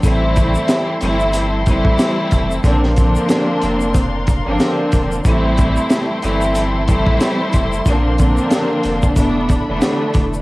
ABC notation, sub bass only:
X:1
M:4/4
L:1/16
Q:"Swing 16ths" 1/4=92
K:Aphr
V:1 name="Sub bass" clef=bass
A,,,4 z2 G,,,4- G,,, A,,, z2 F,,,2 | B,,,4 z2 F,,,4- F,,, G,,, z2 E,,,2 | A,,,4 z2 G,,,4- G,,, A,,, z2 F,,,2 | B,,,4 z2 F,,,2 E,,,3 E,,, z2 E,,,2 |]